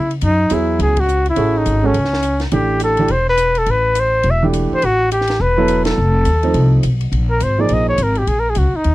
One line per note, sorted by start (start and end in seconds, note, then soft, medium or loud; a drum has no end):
0.00 0.21 C#3 medium
0.00 0.12 E4 medium
0.11 ride soft
0.21 0.49 F#2 medium
0.21 0.55 D#4 medium
0.21 ride medium
0.50 0.78 E2 medium
0.50 0.94 F#3 medium
0.50 0.94 B3 medium
0.50 0.94 E4 medium
0.50 0.94 G#4 medium
0.50 hi-hat pedal medium
0.50 ride medium
0.54 0.81 E4 medium
0.79 1.34 C#2 medium
0.79 1.02 G#4 medium
0.79 ride medium
0.97 1.27 F#4 medium
0.97 kick medium
0.97 ride medium
1.08 hi-hat pedal medium
1.26 ride soft
1.30 1.59 E4 medium
1.36 1.64 A1 medium
1.36 1.80 C#4 medium
1.36 1.80 F#4 medium
1.36 1.80 G#4 medium
1.36 1.80 A4 medium
1.36 ride medium
1.58 1.88 D#4 medium
1.66 1.93 G#1 medium
1.66 hi-hat pedal medium
1.66 ride medium
1.83 1.93 G#3 medium
1.83 1.94 C#4 medium
1.83 2.42 C#4 medium
1.83 1.94 F#4 medium
1.83 1.94 A4 medium
1.94 2.49 C#2 medium
1.94 ride medium
2.05 snare soft
2.13 snare soft
2.23 hi-hat pedal medium
2.23 ride medium
2.40 snare soft
2.40 ride soft
2.51 3.07 A1 medium
2.51 2.95 E3 medium
2.51 2.95 A3 medium
2.51 2.95 D4 medium
2.51 2.95 G4 medium
2.51 2.79 G4 medium
2.51 ride medium
2.80 3.13 A4 medium
2.80 hi-hat pedal medium
2.80 ride medium
2.97 3.09 E3 medium
2.97 3.09 A3 medium
2.97 3.09 D4 medium
2.97 3.09 G4 medium
2.97 ride soft
3.08 3.64 E1 medium
3.08 3.28 C5 medium
3.08 ride medium
3.29 3.60 B4 medium
3.37 hi-hat pedal medium
3.37 ride medium
3.55 3.72 A4 medium
3.55 ride soft
3.66 4.21 A1 medium
3.66 ride medium
3.71 4.01 B4 loud
3.95 hi-hat pedal medium
3.95 ride medium
4.00 4.32 C5 loud
4.23 4.67 E1 medium
4.23 ride medium
4.31 4.45 E5 medium
4.43 4.80 E3 medium
4.43 4.80 A3 medium
4.43 4.80 D4 medium
4.43 4.81 G4 medium
4.53 hi-hat pedal medium
4.53 ride medium
4.71 4.87 C5 loud
4.71 muted upright bass stroke soft
4.82 5.37 A1 medium
4.82 5.12 F#4 loud
4.82 ride medium
5.11 5.42 G4 medium
5.11 hi-hat pedal medium
5.11 ride medium
5.21 snare soft
5.27 snare soft
5.27 ride medium
5.40 5.94 E1 medium
5.40 5.85 B4 loud
5.57 5.95 F#3 medium
5.57 5.95 B3 medium
5.57 5.95 E4 medium
5.57 5.95 A4 medium
5.68 hi-hat pedal medium
5.68 ride medium
5.85 6.79 A4 medium
5.85 snare medium
5.85 ride medium
5.98 6.24 F1 medium
6.25 6.53 D#2 medium
6.25 hi-hat pedal medium
6.25 ride medium
6.43 6.81 F3 medium
6.43 6.81 A3 medium
6.43 6.81 C4 medium
6.43 6.81 D#4 medium
6.43 ride soft
6.54 6.81 C2 medium
6.54 ride medium
6.83 7.10 B1 medium
6.83 hi-hat pedal medium
6.83 ride medium
7.01 ride soft
7.12 7.40 A#1 medium
7.12 ride medium
7.31 7.44 A#4 medium
7.40 7.69 G#1 medium
7.40 7.62 C5 medium
7.40 hi-hat pedal medium
7.40 ride medium
7.58 7.96 F3 medium
7.58 7.96 A#3 medium
7.58 7.96 D#4 medium
7.58 7.96 G#4 medium
7.58 7.75 D5 medium
7.69 7.97 A#1 medium
7.69 ride medium
7.73 7.88 D#5 medium
7.89 8.04 C#5 medium
7.98 8.26 G#1 medium
7.98 hi-hat pedal medium
7.98 ride medium
8.03 8.19 A#4 medium
8.15 8.30 G4 medium
8.15 ride soft
8.27 8.55 A#1 medium
8.27 8.41 G#4 medium
8.27 ride medium
8.40 8.51 A#4 medium
8.50 8.60 G#4 medium
8.55 8.72 C#2 medium
8.55 8.78 F#4 medium
8.55 hi-hat pedal soft
8.55 ride medium
8.74 8.95 D#4 medium
8.74 muted upright bass stroke soft
8.84 8.95 D#2 medium
8.84 ride medium